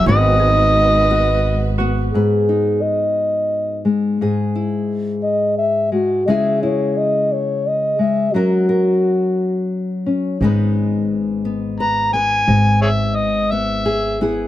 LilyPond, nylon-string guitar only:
\new Staff \with { instrumentName = "Nylon-string guitar" } { \time 6/8 \key gis \minor \tempo 4. = 58 << { <b fis' b'>4. fis'4 b8 | b'8 dis'2~ dis'8 | gis'8 e'2~ e'8 | <gis e' gis'>8 e'2~ e'8 |
<cis' fis' ais'>8 ais'2~ ais'8 | <gis b dis' b'>4. b8 b'8 <b b'>8~ | <b b'>4. b8 gis'8 <b e' gis'>8 | } \\ { gis,2. | gis,2~ gis,8 gis8 | gis,2~ gis,8 gis8 | cis2~ cis8 gis8 |
fis2~ fis8 cis'8 | gis,2. | gis,2. | } >> }